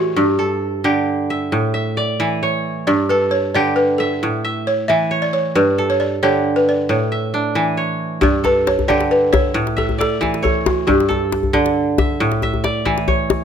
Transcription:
Already playing: A2 E3 F#4 C#5 D5
0.16 G2 G4
0.39 A4
0.84 D3 G4
1.30 E5
1.52 A2
1.74 E5
1.97 D5
2.20 E3
2.43 C#5
2.87 G2 D5
3.09 A4 B4
3.31 C#5
3.55 D3 G4 D5
3.76 B4
3.98 A4 E5
4.23 A2
4.45 E5
4.67 C#5
4.88 E3 E5
5.11 C#5
5.22 D5
5.33 C#5
5.55 G2 B4
5.78 A4
5.90 C#5
6.00 D5
6.23 D3 G4 C#5
6.56 B4
6.69 D5
6.89 A2 C#5
7.12 E5
7.34 D4
7.55 E3
7.77 C#5
8.21 G2 D5, djembe bass
8.44 A4 B4, djembe tone
8.67 C#5, djembe slap
8.79 djembe bass
8.88 D3 G4 D5, djembe tone
9.00 djembe slap
9.11 B4
9.32 C#5 E5, djembe slap, djembe tone, djembe bass
9.54 A2, djembe slap
9.67 djembe slap
9.77 A4 E5, djembe tone
9.89 djembe bass
9.98 A4 D5, djembe slap
10.21 E3, djembe tone
10.34 djembe slap
10.43 A4 C#5, djembe bass
10.66 F#4, djembe slap, djembe tone
10.87 G2 G4, djembe bass
11.00 djembe slap
11.09 A4, djembe tone
11.32 djembe slap
11.43 djembe bass
11.53 D3, djembe tone
11.66 djembe slap
11.98 E5, djembe slap, djembe tone, djembe bass
12.20 A2, djembe slap
12.32 djembe slap
12.42 E5, djembe tone
12.54 djembe bass
12.64 D5, djembe slap
12.85 E3, djembe tone
12.98 djembe slap
13.08 C#5, djembe bass
13.30 djembe slap, djembe tone

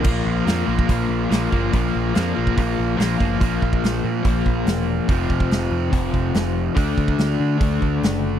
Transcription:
0.04 A#1 A#2 F3 A#3 D4 F4, kick, crash
0.26 A#1
0.46 F2 A#2 F3 A#3, snare, open hi-hat
0.67 A#1 A#2 F3 A#3
0.79 kick
0.89 A#1 A#2 F3 A#3, kick, open hi-hat
1.09 A#1
1.31 A#1 A#2 F3 A#3, snare, open hi-hat
1.52 G1 A#2 F3 A#3, kick
1.72 A#1 A#2 F3 A#3, kick, open hi-hat
1.96 A#1
2.14 F2 A#2 F3 A#3, snare, open hi-hat
2.34 A#1 A#2 F3 A#3
2.47 kick
2.57 A#1 A#2 F3 A#3, kick, open hi-hat
2.79 A#1
2.97 A#1 A#2 F3 A#3, open hi-hat
3.01 snare
3.19 G1 A#2 F3 A#3, kick
3.40 A#1 A#2 F3 A#3, kick, open hi-hat
3.62 A#1, kick
3.73 kick
3.83 A#1, snare, open hi-hat
4.04 A#2
4.23 A#1 A#2 F3 A#3, kick, open hi-hat
4.46 A#1, kick
4.66 E1, snare, open hi-hat
5.08 F1 F2 C3 F3, kick, open hi-hat
5.30 F1, kick
5.40 kick
5.51 F1, snare, open hi-hat
5.71 F2
5.90 F1 F2 C3 F3, kick, open hi-hat
6.14 F1, kick
6.34 F1, snare, open hi-hat
6.75 D2 D3 A3 D4, kick, open hi-hat
6.97 D2, kick
7.08 kick
7.18 D2, snare, open hi-hat
7.40 D3
7.58 D2 D3 A3 D4, kick, open hi-hat
7.82 D2, kick
8.03 F#1, snare, open hi-hat

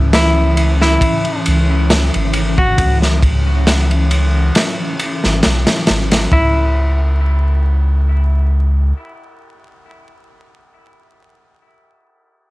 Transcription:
Already playing: C#2 E3 C#4
0.13 E4, snare, ride
0.57 ride
0.81 E4, snare
1.01 kick, ride
1.25 ride
1.46 C#2, ride
1.90 snare, ride
2.14 G#1, ride
2.33 ride
2.58 F#4, kick
2.78 C#2, kick, ride
3.02 snare
3.22 kick, ride
3.67 snare, ride
3.91 ride
4.11 ride
4.55 snare, ride
4.99 ride
5.24 G#1, snare
5.43 B1, snare, ride
5.67 snare, ride
5.87 G#1, snare, ride
6.12 snare, ride
6.32 C#2 E4, kick

